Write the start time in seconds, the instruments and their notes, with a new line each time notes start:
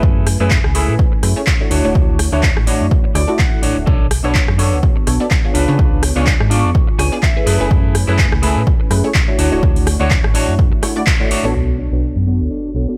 Already playing: analog polysynth A3 C#4 E4 B4 G#5, clean electric guitar E4 G#4 A4 B4
0.03 fm bass F#2, kick
0.27 cross-stick, open hi-hat
0.40 fm bass F#2, analog polysynth A3 C#4 E4 B4 G#5, clean electric guitar E4 G#4 A4 B4
0.50 kick, clap
0.64 fm bass C#2, cross-stick
0.75 analog polysynth A3 C#4 E4 B4 G#5, clean electric guitar E4 G#4 A4 B4, open hi-hat
0.88 fm bass A2
0.99 kick
1.12 muted clean electric guitar stroke
1.22 fm bass F#2, analog polysynth A3 C#4 E4 G#4 B4, muted clean electric guitar stroke, cross-stick, open hi-hat
1.36 analog polysynth A3 C#4 E4 G#4 C#5
1.47 muted clean electric guitar stroke, kick, clap
1.60 analog polysynth A3 D4 E4 F#4 C#5, muted clean electric guitar stroke
1.71 fm bass D2, clean electric guitar D4 F#4 C#5, open hi-hat
1.84 fm bass D1, analog polysynth A3 D4 E4 F#4 C#5
1.95 fm bass D2, kick
2.19 cross-stick, open hi-hat
2.32 fm bass D2, analog polysynth A3 D4 E4 F#4 C#5, clean electric guitar D4 F#4 C#5
2.43 kick, clap
2.56 fm bass A1, cross-stick
2.67 analog polysynth A3 D4 E4 F#4 C#5, clean electric guitar D4 F#4 C#5, open hi-hat
2.80 fm bass F#2
2.91 kick
3.04 muted clean electric guitar stroke
3.14 fm bass D2, analog polysynth A3 D4 E4 F#4 C#5, clean electric guitar D5, muted clean electric guitar stroke, cross-stick, open hi-hat
3.27 analog polysynth A3 D4 E4 F#4
3.38 clean electric guitar F#5, muted clean electric guitar stroke, kick, clap
3.52 muted clean electric guitar stroke
3.62 fm bass A1, clean electric guitar D4 F#4 C#5, open hi-hat
3.76 fm bass D1
3.86 fm bass B1, clean electric guitar D4 A4 C#5, kick
4.11 cross-stick, open hi-hat
4.24 fm bass B1, analog polysynth B3 D4 F#4 A4 C#5, clean electric guitar D4 A4 C#5
4.35 kick, clap
4.48 fm bass F#2, cross-stick
4.58 analog polysynth B3 D4 F#4 A4 C#5, clean electric guitar D4 A4 C#5, open hi-hat
4.72 fm bass D2
4.83 kick
4.96 muted clean electric guitar stroke
5.07 fm bass B1, analog polysynth B3 D4 F#4 A4 C#5, muted clean electric guitar stroke, cross-stick, open hi-hat
5.20 analog polysynth B3 D4 F#4 A4 D5
5.31 muted clean electric guitar stroke, kick, clap
5.44 analog polysynth B3 D4 F4 G#4 C#5, muted clean electric guitar stroke
5.54 fm bass C#2, clean electric guitar D4 F4 B4, open hi-hat
5.68 fm bass C#3, analog polysynth B3 D4 F4 G#4 C#5
5.79 fm bass C#2, kick
6.03 cross-stick, open hi-hat
6.16 fm bass C#2, analog polysynth B3 D4 F4 G#4 C#5, clean electric guitar D4 F4 C#5
6.27 kick, clap
6.40 fm bass G#2, cross-stick
6.50 analog polysynth B3 D4 F4 G#4 C#6, clean electric guitar D4 F4 D5, open hi-hat
6.64 fm bass F2
6.75 kick
6.87 muted clean electric guitar stroke
6.98 fm bass C#2, analog polysynth B3 D4 F4 G#4 C#5, clean electric guitar G#5, muted clean electric guitar stroke, cross-stick, open hi-hat
7.12 analog polysynth B3 D4 F4 G#4 D5
7.23 clean electric guitar E5, muted clean electric guitar stroke, kick, clap
7.36 analog polysynth A3 C#4 E4 G#4 B4, muted clean electric guitar stroke
7.46 fm bass F#2, clean electric guitar E4 G#4 A4 B4, open hi-hat
7.60 fm bass F#1, analog polysynth A3 C#4 E4 B4 G#5
7.71 fm bass F#2, kick
7.95 cross-stick, open hi-hat
8.07 fm bass F#2, analog polysynth A3 C#4 E4 B4 G#5, clean electric guitar E4 G#4 A4 B4
8.19 kick, clap
8.32 fm bass C#2, cross-stick
8.42 analog polysynth A3 C#4 E4 B4 G#5, clean electric guitar E4 G#4 A4 B4, open hi-hat
8.56 fm bass A2
8.67 kick
8.80 muted clean electric guitar stroke
8.90 fm bass F#2, analog polysynth A3 C#4 E4 G#4 B4, muted clean electric guitar stroke, cross-stick, open hi-hat
9.04 analog polysynth A3 C#4 E4 G#4 C#5
9.14 muted clean electric guitar stroke, kick, clap
9.28 analog polysynth A3 D4 E4 F#4 C#5, muted clean electric guitar stroke
9.38 fm bass D2, clean electric guitar D4 F#4 C#5, open hi-hat
9.52 fm bass D1, analog polysynth A3 D4 E4 F#4 C#5
9.63 fm bass D2, kick
9.76 open hi-hat
9.87 cross-stick, open hi-hat
10.00 fm bass D2, analog polysynth A3 D4 E4 F#4 C#5, clean electric guitar D4 F#4 C#5
10.10 kick, clap
10.24 fm bass A1, cross-stick
10.34 analog polysynth A3 D4 E4 F#4 C#5, clean electric guitar D4 F#4 C#5, open hi-hat
10.48 fm bass F#2
10.59 kick
10.72 fm bass A1, muted clean electric guitar stroke
10.82 analog polysynth A3 D4 E4 F#4 C#5, muted clean electric guitar stroke, cross-stick, open hi-hat
10.96 analog polysynth A3 D4 E4 F#4 D5
11.06 muted clean electric guitar stroke, kick, clap
11.20 analog polysynth A3 D4 E4 F#4 C#5, muted clean electric guitar stroke
11.31 fm bass A1, clean electric guitar D4 F#4 C#5, open hi-hat
11.44 fm bass A1, analog polysynth B3 D4 F#4 A4 C#5
11.54 fm bass B1, clean electric guitar D4 A4 C#5, sub drop
11.78 clean electric guitar D4 A4 C#5
11.92 fm bass B1, analog polysynth B3 D4 F#4 A4 C#5
12.16 fm bass F#2
12.27 analog polysynth B3 D4 F#4 A4 C#5
12.40 fm bass D2
12.50 clean electric guitar D4 A4 C#5
12.75 fm bass B1, analog polysynth B3 D4 F#4 A4 C#5
12.88 analog polysynth B3 D4 F#4 A4 D5, muted clean electric guitar stroke